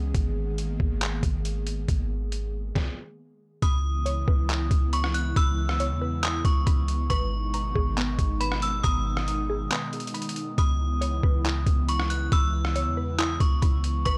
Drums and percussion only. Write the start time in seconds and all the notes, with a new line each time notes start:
0.15 kick, closed hi-hat
0.58 closed hi-hat
0.80 kick
1.01 clap, closed hi-hat
1.23 kick, closed hi-hat
1.45 closed hi-hat
1.67 closed hi-hat
1.88 kick, closed hi-hat
2.32 closed hi-hat
2.75 kick, snare
3.62 kick, closed hi-hat
4.06 closed hi-hat
4.28 kick
4.49 clap, closed hi-hat
4.71 kick, closed hi-hat
4.93 closed hi-hat
5.04 cross-stick
5.14 closed hi-hat
5.36 kick, closed hi-hat
5.69 cross-stick
5.80 closed hi-hat
6.23 clap, closed hi-hat
6.45 kick, closed hi-hat
6.67 kick, closed hi-hat
6.88 closed hi-hat
7.10 kick, closed hi-hat
7.54 closed hi-hat
7.76 kick
7.97 clap, closed hi-hat
8.19 kick, closed hi-hat
8.41 closed hi-hat
8.52 cross-stick
8.62 closed hi-hat
8.84 kick, closed hi-hat
9.17 cross-stick
9.28 closed hi-hat
9.71 clap, closed hi-hat
9.93 closed hi-hat
10.00 closed hi-hat
10.07 closed hi-hat
10.15 closed hi-hat
10.22 closed hi-hat
10.29 closed hi-hat
10.36 closed hi-hat
10.58 kick, closed hi-hat
11.02 closed hi-hat
11.23 kick
11.45 clap, closed hi-hat
11.66 kick, closed hi-hat
11.89 closed hi-hat
12.00 cross-stick
12.10 closed hi-hat
12.32 kick, closed hi-hat
12.65 cross-stick
12.76 closed hi-hat
13.19 clap, closed hi-hat
13.40 kick, closed hi-hat
13.62 kick, closed hi-hat
13.84 closed hi-hat
14.06 kick, closed hi-hat